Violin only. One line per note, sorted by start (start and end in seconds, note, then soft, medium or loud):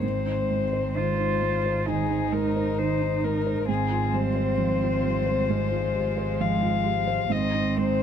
0.03 0.94 C5 soft
0.96 1.85 C5 medium
1.88 2.34 G#4 soft
2.32 2.80 A#4 medium
2.78 3.26 C5 medium
3.24 3.68 A#4 medium
3.68 4.16 G#4 medium
4.14 6.42 C5 medium
6.40 7.33 F5 medium
7.32 7.79 D#5 medium
7.77 8.03 C5 medium